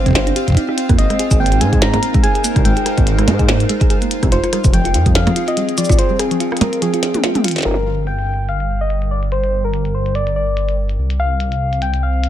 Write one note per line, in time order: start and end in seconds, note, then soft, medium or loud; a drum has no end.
0.00 0.31 G1 medium
0.00 1.90 C4 medium
0.00 7.66 F4 medium
0.00 0.36 C5 medium
0.00 1.94 C5 medium
0.00 2.01 F5 medium
0.00 7.66 F5 medium
0.00 1.89 G5 medium
0.06 0.10 C4 loud
0.06 kick loud
0.06 closed hi-hat soft
0.08 kick medium
0.11 kick medium
0.13 0.26 C5 medium
0.13 kick medium
0.13 snare loud
0.13 closed hi-hat medium
0.27 0.34 D4 medium
0.27 closed hi-hat soft
0.36 0.45 G4 loud
0.36 closed hi-hat medium
0.48 kick medium
0.48 closed hi-hat soft
0.50 kick medium
0.52 kick medium
0.55 0.62 D#4 medium
0.55 kick loud
0.55 closed hi-hat medium
0.69 0.77 D#4 medium
0.69 cross-stick soft
0.78 closed hi-hat medium
0.89 0.95 F2 medium
0.89 0.96 A#3 loud
0.89 kick loud
0.89 cross-stick medium
0.89 closed hi-hat soft
0.98 1.06 G#1 loud
0.98 4.32 G#3 medium
0.98 1.42 D#5 loud
0.98 closed hi-hat medium
1.10 1.14 G#3 loud
1.10 cross-stick soft
1.10 closed hi-hat soft
1.19 5.66 D#4 medium
1.19 1.30 G#4 medium
1.19 closed hi-hat medium
1.31 1.62 G#1 medium
1.31 1.38 G#4 medium
1.31 kick loud
1.31 closed hi-hat soft
1.31 cabasa medium
1.40 1.46 A#3 medium
1.40 1.62 G5 loud
1.46 closed hi-hat medium
1.52 closed hi-hat soft
1.57 1.98 G#2 medium
1.57 1.66 G#3 loud
1.57 4.92 A#4 medium
1.57 1.81 G#5 loud
1.57 closed hi-hat medium
1.73 1.81 G#4 medium
1.73 kick loud
1.73 closed hi-hat soft
1.82 1.91 G#4 medium
1.82 2.25 A#5 loud
1.82 snare loud
1.82 closed hi-hat medium
1.94 1.98 A#3 medium
1.94 4.93 C5 loud
1.94 closed hi-hat soft
1.94 percussion blips medium
2.03 closed hi-hat medium
2.14 2.19 G#3 loud
2.14 kick loud
2.14 closed hi-hat soft
2.23 2.34 G#4 medium
2.23 2.66 G#5 loud
2.23 closed hi-hat medium
2.35 2.42 G#4 medium
2.35 closed hi-hat soft
2.44 2.50 A#3 medium
2.44 closed hi-hat medium
2.44 cabasa medium
2.56 2.62 C2 loud
2.56 kick loud
2.56 cross-stick medium
2.56 closed hi-hat soft
2.65 2.73 G#1 loud
2.65 2.70 G#3 loud
2.65 3.07 G5 loud
2.65 closed hi-hat medium
2.77 2.85 G#4 medium
2.77 closed hi-hat soft
2.86 2.95 G#4 medium
2.86 cross-stick medium
2.86 closed hi-hat medium
2.98 3.29 G#1 medium
2.98 3.02 A#3 medium
2.98 kick loud
2.98 closed hi-hat soft
3.07 closed hi-hat medium
3.18 3.23 G#3 loud
3.18 cross-stick medium
3.18 closed hi-hat soft
3.28 3.64 G#2 medium
3.28 3.38 G#4 medium
3.28 closed hi-hat medium
3.28 percussion blips loud
3.39 3.46 G#4 medium
3.39 kick loud
3.39 closed hi-hat soft
3.48 3.54 A#3 medium
3.48 snare loud
3.48 closed hi-hat medium
3.60 closed hi-hat soft
3.69 3.75 G#3 loud
3.69 closed hi-hat medium
3.81 3.89 G#4 medium
3.81 kick loud
3.81 closed hi-hat soft
3.90 3.99 G#4 medium
3.90 closed hi-hat medium
4.02 4.06 A#3 medium
4.02 closed hi-hat soft
4.11 closed hi-hat medium
4.23 4.29 C2 medium
4.23 4.27 G#3 loud
4.23 kick loud
4.23 cross-stick medium
4.23 closed hi-hat soft
4.32 4.40 F1 loud
4.32 7.65 F3 medium
4.32 4.42 F4 medium
4.32 4.71 C5 loud
4.32 closed hi-hat medium
4.42 4.50 F4 medium
4.42 12.29 G5 medium
4.42 cross-stick soft
4.42 closed hi-hat soft
4.53 4.58 G3 medium
4.53 7.65 G#4 medium
4.53 cross-stick medium
4.53 closed hi-hat medium
4.64 4.96 F1 medium
4.64 9.00 C4 medium
4.64 kick loud
4.64 closed hi-hat soft
4.64 cabasa medium
4.73 4.79 F3 loud
4.73 5.13 G5 loud
4.73 closed hi-hat medium
4.85 4.93 F4 medium
4.85 closed hi-hat soft
4.94 5.31 F2 medium
4.94 5.03 F4 medium
4.94 closed hi-hat medium
5.06 5.10 G3 medium
5.06 kick loud
5.06 closed hi-hat soft
5.15 5.50 F5 loud
5.15 snare loud
5.15 closed hi-hat medium
5.27 5.31 F3 loud
5.27 closed hi-hat soft
5.27 percussion blips medium
5.36 5.47 F4 medium
5.36 closed hi-hat medium
5.48 5.55 F4 medium
5.48 5.79 D#5 loud
5.48 closed hi-hat soft
5.57 5.62 G3 medium
5.57 closed hi-hat medium
5.69 closed hi-hat soft
5.78 5.83 F3 loud
5.78 6.00 D5 loud
5.78 closed hi-hat medium
5.78 cabasa medium
5.85 cabasa medium
5.89 5.95 G#1 loud
5.89 5.97 F4 medium
5.89 kick loud
5.89 cross-stick medium
5.89 closed hi-hat soft
5.89 cabasa medium
5.99 6.07 F4 medium
5.99 6.21 C5 loud
5.99 closed hi-hat medium
6.10 6.14 G3 medium
6.19 6.63 G#4 loud
6.19 cross-stick medium
6.19 closed hi-hat medium
6.31 6.35 F3 loud
6.31 closed hi-hat soft
6.40 6.51 F4 medium
6.40 closed hi-hat medium
6.52 6.59 F4 medium
6.52 cross-stick medium
6.57 closed hi-hat soft
6.61 6.66 G3 medium
6.61 6.83 A#4 medium
6.61 closed hi-hat loud
6.61 percussion blips loud
6.73 closed hi-hat soft
6.82 6.87 F3 loud
6.82 7.44 G#4 medium
6.82 closed hi-hat medium
6.94 7.02 F4 medium
6.94 closed hi-hat soft
7.03 snare medium
7.03 closed hi-hat loud
7.14 7.19 A#3 medium
7.14 closed hi-hat soft
7.14 high tom medium
7.24 7.29 F4 loud
7.24 snare medium
7.24 closed hi-hat medium
7.35 7.42 G#3 medium
7.35 closed hi-hat soft
7.35 mid tom medium
7.44 7.53 F4 loud
7.44 closed hi-hat medium
7.48 closed hi-hat medium
7.51 closed hi-hat medium
7.56 snare soft
7.56 closed hi-hat soft
7.58 snare soft
7.58 closed hi-hat soft
7.61 snare soft
7.61 closed hi-hat soft
7.63 10.97 G1 medium
7.63 10.99 G3 medium
7.63 snare medium
7.65 8.09 A#4 loud
7.65 snare medium
7.68 snare medium
7.71 snare medium
7.74 snare medium
7.74 closed hi-hat medium
7.84 12.14 D3 medium
7.89 11.63 A#4 medium
8.07 8.50 G5 loud
8.07 closed hi-hat medium
8.19 closed hi-hat medium
8.34 closed hi-hat soft
8.49 8.83 F5 loud
8.49 closed hi-hat medium
8.60 closed hi-hat soft
8.81 9.11 D#5 medium
8.90 closed hi-hat medium
9.02 closed hi-hat soft
9.11 9.21 D5 medium
9.23 closed hi-hat soft
9.32 9.66 C5 loud
9.32 closed hi-hat medium
9.44 closed hi-hat soft
9.65 9.96 A#4 medium
9.74 closed hi-hat medium
9.85 closed hi-hat soft
9.95 10.17 C5 medium
10.06 closed hi-hat soft
10.15 10.35 D5 medium
10.15 closed hi-hat medium
10.27 closed hi-hat soft
10.36 10.75 D5 medium
10.57 closed hi-hat medium
10.69 closed hi-hat soft
10.89 closed hi-hat soft
10.98 12.29 C2 medium
10.98 12.29 C4 medium
11.10 closed hi-hat medium
11.20 11.84 F5 loud
11.40 closed hi-hat medium
11.52 closed hi-hat soft
11.58 12.29 C5 medium
11.73 closed hi-hat soft
11.82 12.05 G5 loud
11.82 closed hi-hat medium
11.88 12.29 F5 medium
11.94 closed hi-hat medium
12.03 12.29 F5 loud
12.24 closed hi-hat medium